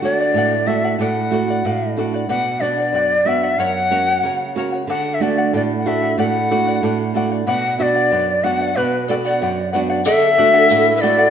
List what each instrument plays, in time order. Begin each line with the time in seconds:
Already playing: nylon-string guitar D3
0.01 nylon-string guitar A3 D4 F#4, charango A4 D5 F#5, quena D5
0.20 charango D5 F#5
0.34 nylon-string guitar A2, charango A4 D5 F#5
0.66 nylon-string guitar A3 D4 F#4, charango A4 D5 F#5, quena E5
0.84 charango D5 F#5
0.99 nylon-string guitar A2, charango A4 D5 F#5, quena F#5
1.31 nylon-string guitar A3 D4 F#4, charango A4 D5 F#5
1.48 charango D5 F#5
1.65 nylon-string guitar A2, charango A4 D5 F#5
1.97 nylon-string guitar A3 D4 F#4, charango A4 D5 F#5
2.14 charango D5 F#5
2.29 nylon-string guitar B2, charango B4 D5 F#5, quena F#5
2.61 nylon-string guitar B3 D4 F#4, charango B4 D5 F#5, quena D5
2.78 charango D5 F#5
2.93 nylon-string guitar F#2, charango B4 D5 F#5
3.25 nylon-string guitar B3 D4 F#4, charango B4 D5 F#5, quena E5
3.43 charango D5 F#5
3.58 nylon-string guitar F#2, charango A#4 C#5 F#5, quena F#5
3.91 nylon-string guitar A#3 C#4 F#4, charango A#4 C#5 F#5
4.08 charango C#5 F#5
4.23 nylon-string guitar C#3, charango A#4 C#5 F#5
4.55 nylon-string guitar A#3 C#4 F#4, charango A#4 C#5 F#5
4.72 charango C#5 F#5
4.87 nylon-string guitar D3, charango A4 D5 F#5, quena F#5
5.14 quena E5
5.20 nylon-string guitar A3 D4 F#4, charango A4 D5 F#5, quena D5
5.38 charango D5 F#5
5.53 nylon-string guitar A2, charango A4 D5 F#5, quena D5
5.79 quena F#5
5.85 nylon-string guitar A3 D4 F#4, charango A4 D5 F#5, quena E5
6.02 charango D5 F#5
6.18 nylon-string guitar A2, charango A4 D5 F#5, quena F#5
6.50 nylon-string guitar A3 D4 F#4, charango A4 D5 F#5
6.67 charango D5 F#5
6.82 nylon-string guitar A2, charango A4 D5 F#5
7.14 nylon-string guitar A3 D4 F#4, charango A4 D5 F#5
7.32 charango D5 F#5
7.47 nylon-string guitar B2, charango B4 D5 F#5, quena F#5
7.79 nylon-string guitar B3 D4 F#4, charango B4 D5 F#5, quena D5 E5
7.95 charango D5 F#5
8.11 nylon-string guitar F#2, charango B4 D5 F#5
8.44 nylon-string guitar B3 D4 F#4, charango B4 D5 F#5, quena F#5
8.61 charango D5 F#5
8.76 nylon-string guitar B2, quena B4, charango B4 D5 F#5
9.08 nylon-string guitar B3 D4 F#4, pan flute A4, charango B4 D5 F#5, quena D5
9.25 pan flute D5, charango D5 F#5, quena F#5
9.41 nylon-string guitar F#2, charango B4 D5 F#5
9.72 nylon-string guitar B3 D4 F#4, charango B4 D5 F#5, pan flute D5, quena F#5
9.90 charango D5 F#5
10.05 nylon-string guitar D3, charango A4 D5 F#5, pan flute A4, quena E5, shaker
10.37 nylon-string guitar A3 D4 F#4, charango A4 D5 F#5
10.54 charango D5 F#5
10.70 nylon-string guitar A2, charango A4 D5 F#5, shaker
10.96 pan flute B4, quena E5
11.01 nylon-string guitar A3 D4 F#4, pan flute A4, charango A4 D5 F#5, quena D5
11.18 charango D5 F#5